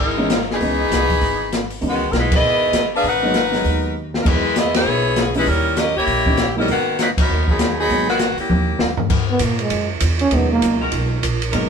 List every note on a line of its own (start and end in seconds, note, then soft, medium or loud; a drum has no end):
0.00 0.57 G#1 medium
0.00 0.46 G#3 medium
0.00 0.46 D#4 medium
0.00 0.46 E4 medium
0.00 0.46 A#4 medium
0.18 0.28 E3 medium
0.18 0.28 G#3 medium
0.18 0.29 B3 medium
0.18 0.29 C#4 medium
0.18 0.29 D#4 medium
0.30 snare medium
0.30 closed hi-hat medium
0.41 snare soft
0.51 1.72 E3 medium
0.51 1.72 B3 loud
0.51 1.72 D#4 medium
0.51 1.72 G#4 loud
0.51 snare soft
0.60 0.89 C#2 medium
0.60 0.78 E3 soft
0.60 0.78 G#3 soft
0.60 0.78 B3 soft
0.60 0.78 C#4 soft
0.60 0.78 D#4 medium
0.60 kick soft
0.60 open hi-hat soft
0.90 1.19 C2 medium
0.90 snare medium
0.90 closed hi-hat medium
1.10 kick medium
1.10 open hi-hat soft
1.21 1.79 G#1 medium
1.21 kick soft
1.21 open hi-hat soft
1.52 snare medium
1.52 closed hi-hat medium
1.70 open hi-hat soft
1.81 2.10 C#2 medium
1.81 1.98 E3 soft
1.81 1.98 G#3 soft
1.81 1.99 B3 soft
1.81 1.99 C#4 soft
1.81 1.99 D#4 soft
1.81 kick soft
1.81 open hi-hat soft
1.87 2.10 D#3 medium
1.87 2.10 G#3 medium
1.87 2.10 B3 medium
1.87 2.10 F#4 medium
2.11 2.40 B1 medium
2.11 2.13 A#4 medium
2.11 snare medium
2.11 closed hi-hat medium
2.18 2.34 G#3 medium
2.18 2.34 D#4 medium
2.18 2.34 E4 medium
2.18 2.34 B4 medium
2.31 2.90 B3 medium
2.31 2.90 E4 medium
2.31 2.89 G#4 medium
2.31 2.90 D#5 loud
2.31 kick medium
2.31 crash medium
2.42 2.70 G#1 medium
2.72 3.01 G1 medium
2.72 snare medium
2.72 closed hi-hat medium
2.96 3.05 D4 medium
2.96 3.05 G#4 medium
2.96 3.05 B4 loud
2.96 3.05 F5 loud
3.04 3.61 G#1 medium
3.04 3.96 D#4 medium
3.04 3.96 B4 medium
3.04 kick soft
3.04 open hi-hat soft
3.08 3.97 A#4 medium
3.08 3.97 F#5 loud
3.23 3.33 F#3 medium
3.23 3.33 G#3 medium
3.23 3.33 A#3 medium
3.23 3.33 B3 medium
3.23 3.33 D#4 medium
3.34 snare medium
3.34 closed hi-hat soft
3.52 3.92 F#3 medium
3.52 3.92 G#3 medium
3.52 3.92 B3 medium
3.52 3.92 D#4 medium
3.52 snare soft
3.52 open hi-hat soft
3.64 4.22 D#2 medium
3.64 kick soft
3.64 open hi-hat soft
4.14 snare medium
4.21 4.83 E2 medium
4.21 4.41 E3 medium
4.21 4.41 F#3 soft
4.21 4.42 G#3 medium
4.21 4.42 D#4 medium
4.21 4.26 A#4 medium
4.25 4.56 G#3 medium
4.25 4.42 B3 soft
4.25 4.56 D#4 medium
4.25 4.56 E4 medium
4.25 4.56 B4 loud
4.25 kick medium
4.25 crash medium
4.56 4.74 B3 medium
4.56 4.74 E4 medium
4.56 4.74 G#4 medium
4.56 4.75 D#5 loud
4.56 snare medium
4.56 closed hi-hat medium
4.74 5.31 B3 medium
4.74 5.31 E4 medium
4.74 5.31 G#4 medium
4.74 5.31 C#5 loud
4.74 snare medium
4.74 ride medium
4.85 5.43 B1 medium
5.16 snare medium
5.16 closed hi-hat medium
5.34 5.45 E3 medium
5.34 5.45 G3 medium
5.34 5.47 G#3 medium
5.34 5.45 A#3 medium
5.34 5.45 C#4 medium
5.34 5.46 D#4 medium
5.34 5.47 D#4 medium
5.34 5.46 E4 medium
5.34 5.47 B4 loud
5.34 open hi-hat soft
5.46 5.92 D#2 medium
5.46 5.77 G3 medium
5.46 5.77 C#4 medium
5.46 5.77 E4 medium
5.46 5.76 A#4 loud
5.46 kick soft
5.46 open hi-hat soft
5.77 5.96 C#4 medium
5.77 5.96 G4 medium
5.77 5.96 A#4 medium
5.77 5.96 D#5 loud
5.77 snare medium
5.77 closed hi-hat medium
5.96 6.06 C#2 medium
5.96 6.53 A#3 medium
5.96 6.53 E4 medium
5.96 6.53 G4 medium
5.96 6.53 C#5 loud
6.07 6.65 A#1 medium
6.07 kick soft
6.07 open hi-hat soft
6.26 6.36 E3 medium
6.26 6.36 G3 soft
6.26 6.37 A#3 medium
6.26 6.37 C#4 medium
6.26 6.37 D#4 medium
6.26 kick medium
6.37 snare medium
6.37 closed hi-hat medium
6.57 6.67 F#3 medium
6.57 6.69 G3 medium
6.57 6.67 G#3 medium
6.57 6.67 A#3 medium
6.57 6.68 B3 soft
6.57 6.69 C#4 medium
6.57 6.68 D#4 medium
6.57 6.69 E4 medium
6.57 6.69 A#4 loud
6.68 7.25 G#1 medium
6.68 6.98 D#3 medium
6.68 6.97 A#3 medium
6.68 6.97 B3 medium
6.68 6.98 F#4 medium
6.68 kick soft
6.68 open hi-hat soft
6.99 7.08 F#3 medium
6.99 7.08 A#3 medium
6.99 7.08 D#4 medium
6.99 7.08 B4 medium
6.99 snare medium
6.99 closed hi-hat medium
7.17 7.46 F#3 medium
7.17 7.46 B3 medium
7.17 7.46 D#4 medium
7.17 7.46 A#4 medium
7.17 kick medium
7.17 crash medium
7.29 7.86 D#2 medium
7.48 7.76 F#3 medium
7.48 7.76 B3 medium
7.48 7.76 D#4 medium
7.48 7.76 G#4 medium
7.48 kick medium
7.59 snare medium
7.59 closed hi-hat medium
7.78 8.06 F#3 medium
7.78 8.06 B3 medium
7.78 8.06 D#4 medium
7.78 8.06 G#4 loud
7.89 8.35 G#1 medium
7.89 8.07 F#3 medium
7.89 8.07 G#3 soft
7.89 8.07 A#3 soft
7.89 8.07 B3 soft
7.89 8.07 D#4 medium
7.89 kick soft
7.89 open hi-hat soft
8.08 8.36 D#3 medium
8.08 8.36 A#3 medium
8.08 8.37 B3 medium
8.08 8.36 F#4 medium
8.08 snare soft
8.19 snare medium
8.19 closed hi-hat medium
8.37 8.95 A#3 medium
8.37 8.95 C#4 medium
8.37 8.95 E4 medium
8.37 8.95 G4 medium
8.37 muted upright bass stroke soft
8.37 open hi-hat soft
8.49 8.78 D#2 medium
8.49 high tom soft
8.79 9.08 D#2 medium
8.79 snare medium
8.97 floor tom medium
9.09 9.39 G#2 medium
9.09 9.55 G#3 medium
9.09 9.55 B3 medium
9.09 9.55 F#4 medium
9.09 9.55 A#4 medium
9.09 kick medium
9.09 crash medium
9.31 9.46 B3 medium
9.39 9.70 A#2 medium
9.39 kick soft
9.39 hi-hat pedal medium
9.39 ride medium
9.44 9.61 A#3 medium
9.59 9.88 G#3 medium
9.59 ride soft
9.70 10.00 F#2 medium
9.70 kick soft
9.70 ride medium
10.00 10.30 E2 medium
10.00 kick soft
10.00 hi-hat pedal medium
10.00 ride medium
10.19 10.36 C#4 loud
10.19 ride soft
10.31 10.61 D#2 medium
10.31 11.16 B2 medium
10.31 11.16 F#3 medium
10.31 11.16 G#3 medium
10.31 11.16 A#3 soft
10.31 10.51 B3 medium
10.31 11.16 D#4 medium
10.31 kick soft
10.31 ride medium
10.52 10.79 A#3 loud
10.62 10.91 C#2 medium
10.62 kick soft
10.62 hi-hat pedal medium
10.62 ride medium
10.80 11.20 G#3 medium
10.80 11.20 F#4 medium
10.80 11.20 A#4 loud
10.92 11.22 B1 medium
10.92 kick soft
10.92 ride medium
11.23 11.52 A#1 medium
11.23 kick soft
11.23 hi-hat pedal medium
11.23 ride medium
11.42 ride medium
11.51 11.69 G#1 medium
11.51 11.69 F#3 medium
11.51 11.69 G#3 medium
11.51 11.69 G#3 soft
11.51 11.69 A#3 soft
11.51 11.69 B3 soft
11.51 11.69 D#4 medium
11.51 11.69 F#4 medium
11.51 11.69 A#4 loud
11.51 kick soft
11.51 ride medium